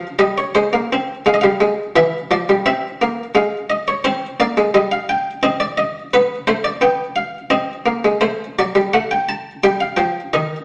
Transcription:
0.19 0.41 G3 medium
0.19 0.37 D#5 medium
0.38 0.55 C#5 medium
0.55 0.73 G#3 medium
0.55 1.24 C5 medium
0.73 0.91 A#3 medium
0.93 1.14 C4 medium
1.26 1.43 G#3 medium
1.26 1.33 F5 medium
1.34 1.41 D#5 medium
1.41 1.61 G3 medium
1.41 1.95 F5 medium
1.60 1.82 G#3 medium
1.96 2.17 E3 medium
1.96 2.18 E5 medium
2.31 2.48 F3 medium
2.31 2.53 D5 medium
2.49 2.66 G3 medium
2.66 2.88 C4 medium
2.66 3.33 E5 medium
3.02 3.23 A#3 medium
3.35 4.02 G#3 medium
3.35 3.57 F5 medium
3.70 3.86 D#5 medium
3.88 4.04 C#5 medium
4.04 4.26 C4 medium
4.04 4.26 C5 loud
4.40 4.56 A#3 medium
4.40 4.61 D5 medium
4.57 4.73 G#3 medium
4.74 5.41 G3 medium
4.74 4.91 D#5 medium
4.92 5.08 F5 medium
5.09 5.30 G5 medium
5.43 6.10 C4 medium
5.43 5.59 D#5 medium
5.60 5.77 D5 medium
5.78 5.99 D#5 medium
6.14 6.35 B3 medium
6.14 6.35 B4 medium
6.47 6.69 A3 medium
6.47 6.64 C5 medium
6.64 6.81 D5 medium
6.81 7.49 B3 medium
6.81 7.04 G5 medium
7.16 7.38 F5 medium
7.50 7.73 C4 medium
7.50 8.20 D#5 medium
7.86 8.03 A#3 medium
8.05 8.22 G#3 medium
8.21 8.44 A3 medium
8.21 8.44 C5 medium
8.59 8.76 F#3 medium
8.59 8.81 D5 medium
8.75 8.93 G3 medium
8.93 9.62 A3 medium
8.93 9.11 F#5 medium
9.11 9.28 G5 medium
9.29 9.51 A5 medium
9.64 9.86 G3 medium
9.64 9.81 G5 medium
9.80 9.98 F5 medium
9.97 10.20 F3 medium
9.97 10.19 G5 medium
10.33 10.56 D#3 medium
10.33 10.56 D#5 medium

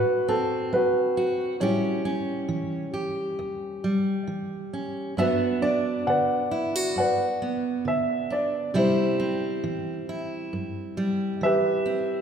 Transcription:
0.00 0.64 A2 medium
0.00 0.27 C4 medium
0.00 0.74 F#4 medium
0.00 1.16 F#4 medium
0.00 0.27 A4 medium
0.00 0.30 B4 medium
0.28 1.55 C4 medium
0.28 0.74 A4 medium
0.73 1.52 A3 medium
0.73 1.58 F#4 medium
0.73 1.57 B4 medium
1.17 1.56 F#4 medium
1.60 2.40 A2 medium
1.60 3.84 G3 medium
1.60 2.04 C#4 medium
1.60 3.36 E4 medium
1.60 3.36 G4 medium
1.60 2.93 G4 medium
1.60 2.90 C#5 medium
2.05 4.72 C#4 medium
2.49 3.29 E3 medium
2.94 5.19 G4 medium
3.39 4.20 E2 medium
3.84 5.18 G3 medium
4.27 5.09 E3 medium
4.73 5.13 C#4 soft
5.17 5.98 G2 medium
5.17 7.41 B3 medium
5.17 5.61 D4 medium
5.17 6.51 F#4 medium
5.17 6.08 B4 medium
5.17 5.65 E5 medium
5.62 8.29 D4 medium
5.62 6.08 D5 medium
6.07 6.88 D3 medium
6.07 6.98 B4 medium
6.07 6.98 D5 medium
6.07 6.96 F#5 medium
6.51 6.76 E4 medium
6.76 8.75 F#4 medium
6.96 7.77 G2 medium
6.96 8.73 B4 medium
6.96 8.31 D5 medium
6.96 7.83 F#5 medium
7.42 8.70 B3 medium
7.85 8.66 D3 medium
7.85 8.33 E5 medium
8.30 8.70 D4 soft
8.30 8.73 D5 medium
8.74 9.55 C3 medium
8.74 10.96 G3 medium
8.74 9.19 C4 medium
8.74 10.08 E4 medium
8.74 10.51 G4 soft
8.74 10.06 C5 medium
8.78 10.51 E4 medium
9.20 11.84 C4 medium
9.64 10.44 E3 medium
10.09 12.21 E4 medium
10.53 11.33 G2 medium
10.97 12.21 G3 medium
11.41 12.21 E3 medium
11.41 12.21 E5 loud
11.45 12.21 G4 medium
11.45 12.21 B4 medium
11.86 12.21 C4 medium

